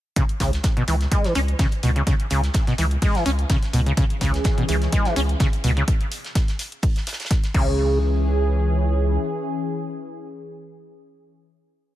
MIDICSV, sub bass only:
0, 0, Header, 1, 2, 480
1, 0, Start_track
1, 0, Key_signature, 4, "minor"
1, 0, Tempo, 476190
1, 165, Time_signature, 4, 2, 24, 8
1, 12047, End_track
2, 0, Start_track
2, 0, Title_t, "Sub bass"
2, 0, Program_c, 0, 38
2, 405, Note_on_c, 0, 37, 92
2, 591, Note_off_c, 0, 37, 0
2, 885, Note_on_c, 0, 37, 103
2, 1071, Note_off_c, 0, 37, 0
2, 1365, Note_on_c, 0, 37, 90
2, 1551, Note_off_c, 0, 37, 0
2, 1845, Note_on_c, 0, 37, 97
2, 2031, Note_off_c, 0, 37, 0
2, 2325, Note_on_c, 0, 37, 91
2, 2511, Note_off_c, 0, 37, 0
2, 2805, Note_on_c, 0, 37, 106
2, 2991, Note_off_c, 0, 37, 0
2, 3285, Note_on_c, 0, 37, 89
2, 3471, Note_off_c, 0, 37, 0
2, 3765, Note_on_c, 0, 37, 99
2, 3951, Note_off_c, 0, 37, 0
2, 4245, Note_on_c, 0, 37, 90
2, 4431, Note_off_c, 0, 37, 0
2, 4724, Note_on_c, 0, 37, 105
2, 4911, Note_off_c, 0, 37, 0
2, 5204, Note_on_c, 0, 37, 92
2, 5391, Note_off_c, 0, 37, 0
2, 5684, Note_on_c, 0, 37, 102
2, 5870, Note_off_c, 0, 37, 0
2, 7605, Note_on_c, 0, 37, 94
2, 9245, Note_off_c, 0, 37, 0
2, 12047, End_track
0, 0, End_of_file